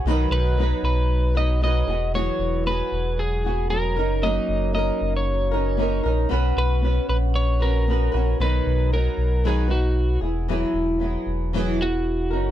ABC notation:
X:1
M:4/4
L:1/16
Q:"Swing 16ths" 1/4=115
K:B
V:1 name="Electric slide guitar"
z2 B4 B4 d2 d4 | c4 B4 G4 A4 | d4 d3 c6- c z2 | z2 B4 B2 c2 A6 |
B4 A4 G2 F4 z2 | z8 z2 F6 |]
V:2 name="Nylon-string guitar"
[B,,D,F,B,DB]4 [F,B,DB]6 [F,B,DB]2 [F,B,DB]2 [B,FG]2 | [E,F,B,FG]4 [F,B,FG]6 [B,FG]2 [F,B,FG]2 [CDA]2 | [F,A,CDA]4 [A,CDA]6 [CDA]2 [A,CDA]2 [CDA]2 | [B,CFB]4 [B,CFB]6 [CFB]2 [B,CFB]2 [CFB]2 |
[B,,D,F,B,DB]4 [F,B,D]4 [B,,D,F,B,DB]2 [F,B,DB]4 [B,EG]2 | [E,F,B,EG]4 [F,B,EG]4 [E,F,B,EG]2 [B,EG]4 [CDA]2 |]
V:3 name="Sub bass" clef=bass
B,,,2 B,,,4 B,,,8 E,,,2- | E,,,2 E,,,4 E,,,8 F,,,2- | F,,,2 F,,,4 F,,,8 A,,,2 | B,,,2 B,,,4 A,,,8 A,,,2 |
B,,,2 B,,,4 B,,,8 E,,,2- | E,,,2 E,,,4 E,,,8 F,,,2 |]